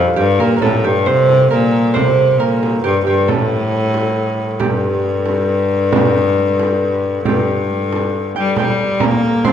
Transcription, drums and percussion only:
0.62 frame drum
1.06 frame drum
1.29 frame drum
1.73 frame drum
1.96 frame drum
2.63 frame drum
3.06 frame drum
3.29 frame drum
3.72 frame drum
3.94 frame drum
4.39 frame drum
4.60 frame drum
5.05 frame drum
5.26 frame drum
5.71 frame drum
5.93 frame drum
6.38 frame drum
6.60 frame drum
7.04 frame drum
7.25 frame drum
7.48 frame drum
7.93 frame drum
8.36 frame drum
8.57 frame drum
8.78 frame drum
9.00 frame drum
9.23 frame drum
9.45 frame drum

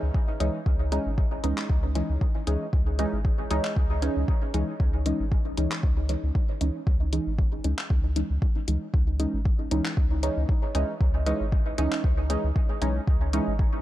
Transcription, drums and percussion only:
0.14 kick
0.40 closed hi-hat
0.66 kick
0.92 closed hi-hat
1.18 kick
1.44 closed hi-hat
1.58 clap
1.70 kick
1.95 closed hi-hat
2.21 kick
2.47 closed hi-hat
2.73 kick
2.99 closed hi-hat
3.25 kick
3.51 closed hi-hat
3.65 clap
3.76 kick
4.02 closed hi-hat
4.28 kick
4.54 closed hi-hat
4.80 kick
5.06 closed hi-hat
5.32 kick
5.57 closed hi-hat
5.72 clap
5.83 kick
6.09 closed hi-hat
6.35 kick
6.61 closed hi-hat
6.87 kick
7.13 closed hi-hat
7.39 kick
7.64 closed hi-hat
7.78 clap
7.90 kick
8.16 closed hi-hat
8.42 kick
8.68 closed hi-hat
8.94 kick
9.20 closed hi-hat
9.45 kick
9.71 closed hi-hat
9.85 clap
9.97 kick
10.23 closed hi-hat
10.49 kick
10.75 closed hi-hat
11.01 kick
11.26 closed hi-hat
11.52 kick
11.78 closed hi-hat
11.92 clap
12.04 kick
12.30 closed hi-hat
12.56 kick
12.82 closed hi-hat
13.07 kick
13.33 closed hi-hat
13.59 kick

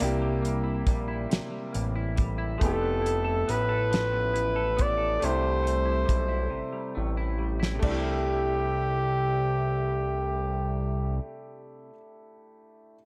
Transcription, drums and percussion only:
0.00 closed hi-hat
0.45 closed hi-hat
0.87 kick, closed hi-hat
1.31 snare, closed hi-hat
1.74 closed hi-hat
2.17 kick, closed hi-hat
2.61 kick, closed hi-hat
3.06 closed hi-hat
3.49 closed hi-hat
3.93 snare, closed hi-hat
4.36 closed hi-hat
4.79 kick, closed hi-hat
5.22 closed hi-hat
5.67 closed hi-hat
6.09 kick, closed hi-hat
7.63 snare
7.82 kick, crash

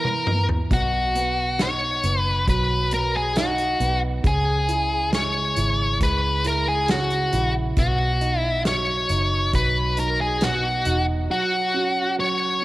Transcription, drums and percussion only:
0.05 mid tom
0.27 mid tom
0.49 floor tom
0.71 kick, closed hi-hat
1.15 closed hi-hat
1.59 snare, closed hi-hat
2.03 closed hi-hat
2.47 kick, closed hi-hat
2.91 closed hi-hat
3.36 snare, closed hi-hat
3.58 closed hi-hat
3.80 closed hi-hat
4.24 kick, closed hi-hat
4.69 closed hi-hat
5.13 snare, closed hi-hat
5.56 closed hi-hat
6.00 kick, closed hi-hat
6.44 closed hi-hat
6.88 snare, closed hi-hat
7.10 closed hi-hat
7.33 closed hi-hat
7.77 kick, closed hi-hat
8.21 closed hi-hat
8.65 snare, closed hi-hat
9.09 closed hi-hat
9.53 kick, closed hi-hat
9.97 closed hi-hat
10.41 snare, closed hi-hat
10.85 closed hi-hat

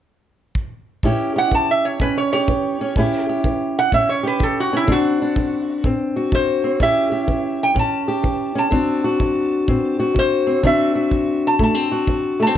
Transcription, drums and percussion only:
0.55 kick
1.03 kick
1.51 kick
2.00 kick
2.48 kick
2.96 kick
3.44 kick
3.92 kick
4.40 kick
4.88 kick
5.36 kick
5.84 kick
6.32 kick
6.80 kick
7.28 kick
7.76 kick
8.24 kick
8.72 kick
9.20 kick
9.68 kick
10.16 kick
10.64 kick
11.11 kick
11.59 kick
12.07 kick

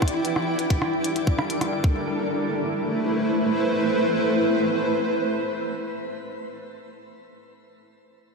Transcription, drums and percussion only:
0.02 kick, cross-stick
0.08 closed hi-hat
0.25 closed hi-hat
0.36 cross-stick
0.59 closed hi-hat
0.70 kick, closed hi-hat
0.82 cross-stick
1.04 closed hi-hat
1.16 closed hi-hat
1.27 kick
1.39 cross-stick
1.50 closed hi-hat
1.61 cross-stick, closed hi-hat
1.84 kick

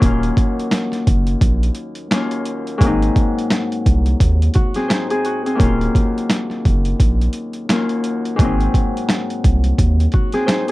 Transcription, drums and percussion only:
0.02 kick, closed hi-hat
0.23 closed hi-hat
0.37 kick, closed hi-hat
0.59 closed hi-hat
0.71 snare, closed hi-hat
0.92 snare, closed hi-hat
1.07 kick, closed hi-hat
1.27 closed hi-hat
1.41 kick, closed hi-hat
1.63 closed hi-hat
1.75 closed hi-hat
1.95 closed hi-hat
2.11 snare, closed hi-hat
2.31 closed hi-hat
2.46 closed hi-hat
2.67 closed hi-hat
2.81 kick, closed hi-hat
3.02 closed hi-hat
3.16 kick, closed hi-hat
3.39 closed hi-hat
3.51 snare, closed hi-hat
3.72 closed hi-hat
3.86 kick, closed hi-hat
4.06 closed hi-hat
4.20 kick, closed hi-hat
4.42 closed hi-hat
4.54 kick, closed hi-hat
4.74 snare, closed hi-hat
4.90 snare, closed hi-hat
5.10 closed hi-hat
5.25 closed hi-hat
5.46 closed hi-hat
5.60 kick, closed hi-hat
5.81 closed hi-hat
5.95 kick, closed hi-hat
6.18 closed hi-hat
6.30 snare, closed hi-hat
6.50 snare, closed hi-hat
6.65 kick, closed hi-hat
6.85 closed hi-hat
7.00 kick, closed hi-hat
7.21 closed hi-hat
7.33 closed hi-hat
7.53 closed hi-hat
7.69 snare, closed hi-hat
7.89 closed hi-hat
8.04 closed hi-hat
8.25 closed hi-hat
8.39 kick, closed hi-hat
8.60 closed hi-hat
8.74 kick, closed hi-hat
8.97 closed hi-hat
9.09 snare, closed hi-hat
9.30 closed hi-hat
9.44 kick, closed hi-hat
9.64 closed hi-hat
9.79 kick, closed hi-hat
10.00 closed hi-hat
10.12 kick, closed hi-hat
10.32 snare, closed hi-hat
10.48 snare, closed hi-hat
10.68 closed hi-hat

